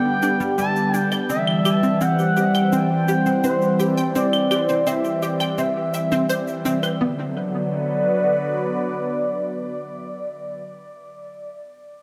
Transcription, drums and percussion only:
0.22 cabasa
0.40 cabasa
0.58 cabasa
0.76 cabasa
0.94 cabasa
1.12 cabasa, claves
1.30 cabasa
1.47 claves
1.65 cabasa, claves
1.83 cabasa
2.01 cabasa
2.19 cabasa
2.37 cabasa
2.55 cabasa, claves
2.73 cabasa
3.08 cabasa
3.26 cabasa
3.44 cabasa
3.62 cabasa
3.80 cabasa
3.98 cabasa
4.15 cabasa
4.33 cabasa, claves
4.51 cabasa, claves
4.69 cabasa
4.87 cabasa
5.05 cabasa
5.22 cabasa
5.40 cabasa, claves
5.58 cabasa
5.94 cabasa
6.12 cabasa
6.30 cabasa
6.48 cabasa
6.65 cabasa
6.83 cabasa, claves

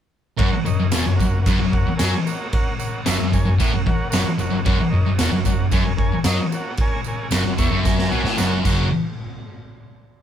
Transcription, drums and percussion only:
0.39 kick, crash
0.66 tambourine
0.92 snare, tambourine, crash
1.20 kick, tambourine
1.46 kick, tambourine, crash
1.73 kick
1.99 snare, tambourine, crash
2.27 tambourine
2.53 kick, crash
2.80 tambourine
3.06 snare, tambourine, crash
3.33 kick, tambourine
3.60 kick, tambourine, crash
3.87 kick
4.12 snare, tambourine, crash
4.39 tambourine
4.66 kick, crash
5.19 snare, tambourine, crash
5.45 kick, tambourine
5.71 kick, tambourine, crash
5.98 kick
6.24 snare, tambourine, crash
6.52 tambourine
6.77 kick, crash
7.04 tambourine
7.31 snare, tambourine, crash
7.58 kick, tambourine
7.85 kick, snare, tambourine
7.99 snare
8.12 tambourine
8.25 snare
8.38 snare, tambourine
8.65 kick, crash, tambourine

